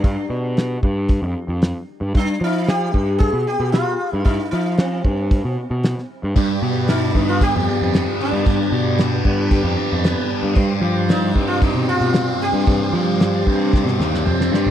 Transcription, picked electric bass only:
\new Staff \with { instrumentName = "Picked electric bass" } { \clef bass \time 4/4 \tempo 4 = 114 g,16 r16 b,4 g,8. f,16 r16 f,8 r8 g,16 | g,16 r16 f4 g,8. b,16 r16 b,8 r8 g,16 | g,16 r16 f4 g,8. b,16 r16 b,8 r8 g,16 | g,16 r16 b,4 g,8. f,16 r16 f,8 r8 g,16 |
g,16 r16 b,4 g,8. f,16 r16 f,8 r8 g,16 | g,16 r16 f4 g,8. b,16 r16 b,8 r8 g,16 | g,16 r16 f4 g,8. b,16 ees,8 f,8 g,8 | }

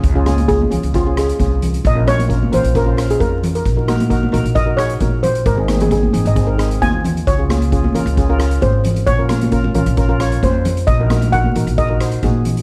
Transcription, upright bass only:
\new Staff \with { instrumentName = "Upright bass" } { \clef bass \time 4/4 \key des \major \tempo 4 = 133 des,4. des,16 des,4~ des,16 c,4 | bes,,4. bes,,16 bes,,4~ bes,,16 f,4 | bes,,4. bes,,16 bes,,4~ bes,,16 bes,,4 | aes,,4. aes,,16 aes,,4~ aes,,16 ees,4 |
des,4. des,16 des,4~ des,16 aes,,4 | bes,,4. bes,,16 bes,,4~ bes,,16 f,4 | bes,,4. bes,,16 bes,,4~ bes,,16 bes,,4 | }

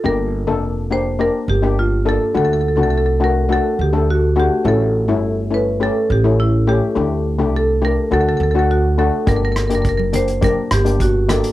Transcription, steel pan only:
\new Staff \with { instrumentName = "Steel pan" } { \time 4/4 \key g \minor \tempo 4 = 104 <bes d' g'>8 r16 <bes d' a'>8 r16 <bes d' g'>16 r16 <bes d' g'>8 r16 <bes d' g'>8 r16 <bes d' a'>16 r16 | <a d' fis'>8 r16 <a d' fis'>8 r16 <a d' fis'>16 r16 <a d' fis'>8 r16 <a d' a'>8 r16 <a d' fis'>16 r16 | <a cis' e'>8 r16 <a cis' e'>8 r16 <a cis' e'>16 r16 <a cis' g'>8 r16 <a cis' e'>8 r16 <a cis' g'>16 r16 | <a d' g'>8 r16 <a d' g'>8 r16 <a d' g'>16 r16 <a d' fis'>8 r16 <a d' fis'>8 r16 <a d' fis'>16 r16 |
<bes d' g'>8 r16 <bes d' g'>8 r16 <bes d' g'>16 r16 <bes d' g'>8 r16 <bes d' g'>8 r16 <bes d' g'>16 r16 | }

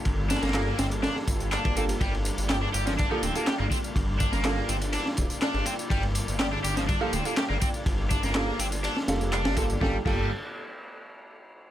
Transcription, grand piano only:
\new Staff \with { instrumentName = "Grand piano" } { \time 4/4 \key g \minor \tempo 4 = 123 r4 <bes f' g' a'>16 r2 r16 <bes f' g' a'>16 r16 | r2 r16 <bes f' g' a'>16 r16 <bes f' g' a'>16 r4 | r4 <bes f' g' a'>16 r2 r8. | r2 r16 <bes f' g' a'>16 r16 <bes f' g' a'>16 r4 |
r4 <bes f' g' a'>16 r4 r16 <bes f' g' a'>4 <bes f' g' a'>16 r16 | <bes f' g' a'>16 r16 <bes f' g' a'>8 r2. | }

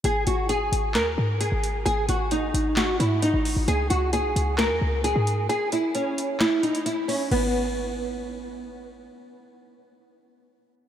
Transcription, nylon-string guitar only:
\new Staff \with { instrumentName = "Nylon-string guitar" } { \time 4/4 \key gis \minor \tempo 4 = 132 gis'8 fis'8 gis'4 ais'4 gis'4 | gis'8 fis'8 dis'4 fis'8 e'8 dis'4 | gis'8 fis'8 gis'4 ais'4 gis'4 | gis'8 e'8 cis'4 e'8 dis'8 e'8 cis'8 |
b2. r4 | r1 | }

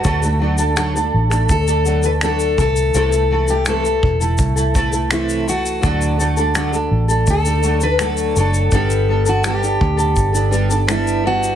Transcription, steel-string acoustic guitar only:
\new Staff \with { instrumentName = "Steel-string acoustic guitar" } { \time 4/4 \key d \mixolydian \tempo 4 = 83 fis'2 a'8. b'16 a'8 a'8 | a'8. g'16 a'2 e'8 fis'8~ | fis'2 a'8. b'16 a'8 a'8 | a'8. fis'16 g'2 e'8 fis'8 | }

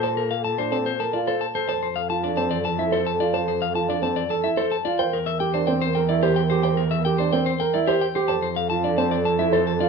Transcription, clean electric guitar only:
\new Staff \with { instrumentName = "Clean electric guitar" } { \time 3/4 \key f \major \tempo 4 = 109 a''16 bes'16 f''16 a''16 c''16 a''16 c''16 a''16 d''16 a'16 a''16 c''16 | a''16 c''16 f''16 a''16 d''16 a''16 d''16 a''16 e''16 a'16 a''16 d''16 | a''16 c''16 f''16 a''16 d''16 a''16 d''16 a''16 e''16 a'16 a''16 d''16 | g''16 bes'16 e''16 g''16 c''16 g''16 c''16 g''16 d''16 g'16 g''16 c''16 |
g''16 bes'16 e''16 g''16 c''16 g''16 c''16 g''16 d''16 g'16 g''16 c''16 | a''16 c''16 f''16 a''16 d''16 a''16 d''16 a''16 e''16 a'16 a''16 d''16 | }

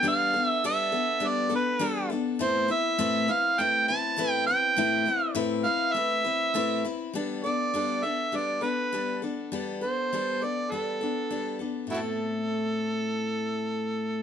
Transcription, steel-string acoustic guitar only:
\new Staff \with { instrumentName = "Steel-string acoustic guitar" } { \time 4/4 \key g \mixolydian \tempo 4 = 101 <g b d' a'>8 <b d' a'>8 <g b d' a'>8 <b d' a'>8 <g b d' a'>8 <b d' a'>8 <g b d' a'>8 <b d' a'>8 | <a, a c' e' b'>8 <c' e' b'>8 <a, a c' e' b'>8 <c' e' b'>8 <a c' e' b'>8 <c' e' b'>8 <a, a c' e' b'>8 <c' e' b'>8 | <a, a c' e' b'>8 <c' e' b'>8 <a, a c' e' b'>8 <c' e' b'>8 <a c' e' b'>8 <c' e' b'>8 <a, a c' e' b'>8 <c' e' b'>8 | <g b d' a'>8 <b d' a'>8 <g b d' a'>8 <b d' a'>8 <g b d' a'>8 <b d' a'>8 <g b d' a'>8 <b d' a'>8 |
<g b d' a'>8 <b d' a'>8 <g b d' a'>8 <b d' a'>8 <g b d' a'>8 <b d' a'>8 <g b d' a'>8 <b d' a'>8 | <a, a c' e' a'>1 | }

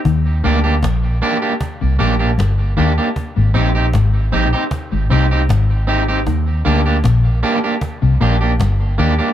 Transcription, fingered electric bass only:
\new Staff \with { instrumentName = "Fingered electric bass" } { \clef bass \time 4/4 \key ees \major \tempo 4 = 77 ees,8 d,8 bes,,8 r8. c,16 bes,,8 g,,8 ees,16 r16 | r16 aes,,16 bes,,8 aes,,8 bes,,16 r8 aes,,16 c,8 aes,,4 | ees,8 d,8 bes,,8 r8. c,16 bes,,8 g,,8 ees,16 r16 | }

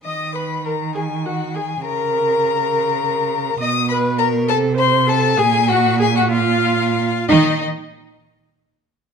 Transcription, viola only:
\new Staff \with { instrumentName = "Viola" } { \time 6/8 \key ees \minor \tempo 4. = 67 ees''8 ces''8 bes'8 aes'8 ges'8 aes'8 | bes'2. | dis''8 b'8 ais'8 a'8 c''8 a'8 | aes'8 ges'8 aes'16 ges'16 f'4. |
ees'8 r2 r8 | }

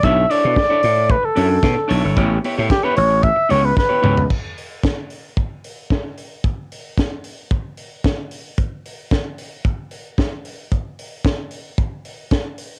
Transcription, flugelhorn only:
\new Staff \with { instrumentName = "Flugelhorn" } { \time 4/4 \key a \mixolydian \tempo 4 = 112 e''8 d''4. b'16 a'4. r16 | r4 g'16 b'16 cis''8 e''8 cis''16 b'16 b'4 | r1 | r1 |
r1 | r1 | }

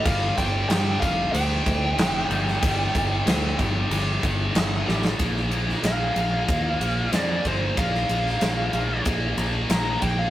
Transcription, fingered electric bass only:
\new Staff \with { instrumentName = "Fingered electric bass" } { \clef bass \time 4/4 \key bes \major \tempo 4 = 93 g,,8 g,,8 g,8 f,,8 d,8 d,8 f,,8 g,,8 | g,,8 g,,8 d,8 g,,8 g,,8 g,,8 g,,8 a,,8 | bes,,4 bes,,8 bes,,8 ees,8 bes,,8 f,8 g,,8 | bes,,8 bes,,8 bes,,8 bes,,8 bes,,8 bes,,8 bes,,8 bes,,8 | }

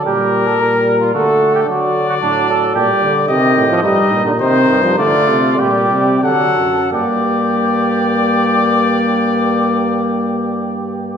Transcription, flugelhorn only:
\new Staff \with { instrumentName = "Flugelhorn" } { \time 3/4 \key g \minor \tempo 4 = 101 g'8. a'16 bes'8. f'16 fis'8. g'16 | fis'8. fis'16 d'8 a'8 g'4 | g'4 ees'4 ees'4 | f'4 g'4 a'4 |
g'2.~ | g'2. | }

